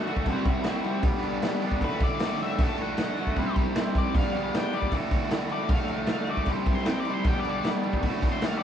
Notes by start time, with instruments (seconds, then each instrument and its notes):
Already playing: lead electric guitar F#4
0.07 overdriven electric guitar D3 A3 F#4, crash
0.16 kick
0.26 overdriven electric guitar C3 G3 C4 E4 G4, kick, crash
0.30 overdriven electric guitar C5
0.45 kick, crash
0.63 overdriven electric guitar C3 G3 C4, snare, crash
0.68 overdriven electric guitar E4 G4 C5
0.84 overdriven electric guitar E4 G4 C5, crash
0.88 overdriven electric guitar C4
1.03 overdriven electric guitar G2 D3 G3, kick, crash
1.07 overdriven electric guitar B3 D4 G4
1.23 overdriven electric guitar B3 D4 G4, crash
1.28 overdriven electric guitar G3
1.42 snare, crash
1.62 overdriven electric guitar B3 D4 G4, crash
1.66 overdriven electric guitar G3
1.72 kick
1.81 overdriven electric guitar D2 A2 D3 A3, lead electric guitar B4, kick, crash
1.86 overdriven electric guitar F#4
2.00 lead electric guitar D5, kick, crash
2.19 overdriven electric guitar D2 A2 D3, snare, crash
2.24 overdriven electric guitar A3 F#4
2.39 overdriven electric guitar A3 F#4, lead electric guitar E5, crash
2.45 overdriven electric guitar D3
2.59 overdriven electric guitar A2 D3 A3, kick, crash
2.63 overdriven electric guitar F#4, lead electric guitar A5
2.78 overdriven electric guitar A3 F#4, crash
2.82 overdriven electric guitar D3, lead electric guitar F#5
2.97 snare, crash
3.17 overdriven electric guitar A3 F#4, crash
3.21 overdriven electric guitar D3
3.27 kick
3.36 overdriven electric guitar C3 G3 C4 E4 G4, kick, crash
3.40 overdriven electric guitar C5
3.56 kick, crash
3.75 overdriven electric guitar C3 G3 C4 E4 G4, snare, crash
3.79 overdriven electric guitar C5
3.95 overdriven electric guitar C4 E4 G4 C5, lead electric guitar D5, kick, snare, crash
4.14 overdriven electric guitar G2 D3 G3 B3 D4 G4, lead electric guitar F5, kick, crash
4.34 overdriven electric guitar G3 B3 D4 G4, crash
4.54 lead electric guitar G5, snare, crash
4.73 overdriven electric guitar B3 D4 G4, lead electric guitar D5, crash
4.77 overdriven electric guitar G3
4.82 kick
4.92 overdriven electric guitar D2 A2 D3 A3, kick, crash
4.96 overdriven electric guitar F#4
5.11 kick, crash
5.22 snare
5.31 overdriven electric guitar D2 A2 D3 A3 F#4, snare, crash
5.49 overdriven electric guitar F#4, lead electric guitar D5, crash
5.53 overdriven electric guitar D3 A3
5.69 overdriven electric guitar A2 D3 A3, lead electric guitar F5, kick, crash
5.74 overdriven electric guitar F#4
5.88 overdriven electric guitar F#4, crash
5.93 overdriven electric guitar D3 A3
6.07 lead electric guitar F5, snare, crash
6.27 overdriven electric guitar A3 F#4, lead electric guitar D5, crash
6.32 overdriven electric guitar D3
6.37 kick
6.46 overdriven electric guitar C3 G3 C4, kick, crash
6.50 overdriven electric guitar E4 G4 C5
6.66 kick, crash
6.75 lead electric guitar C6, snare
6.85 overdriven electric guitar C3 G3 C4 E4, lead electric guitar G5, snare, crash
6.90 overdriven electric guitar G4 C5
7.00 lead electric guitar D5
7.05 overdriven electric guitar E4 G4 C5, crash
7.10 overdriven electric guitar C4
7.14 lead electric guitar C6
7.24 overdriven electric guitar G2 D3 G3 B3, lead electric guitar G5, kick, crash
7.29 overdriven electric guitar D4 G4
7.39 lead electric guitar D5
7.44 overdriven electric guitar B3 D4 G4, crash
7.49 overdriven electric guitar G3, lead electric guitar D5
7.64 snare, crash
7.83 overdriven electric guitar B3 D4 G4, crash
7.88 overdriven electric guitar G3
7.93 kick
8.03 overdriven electric guitar D2 A2 D3 A3, kick, crash
8.07 overdriven electric guitar F#4
8.22 kick, crash
8.32 lead electric guitar C6
8.41 overdriven electric guitar D2 A2 D3 A3, snare, crash
8.46 overdriven electric guitar F#4, lead electric guitar F5
8.58 lead electric guitar D5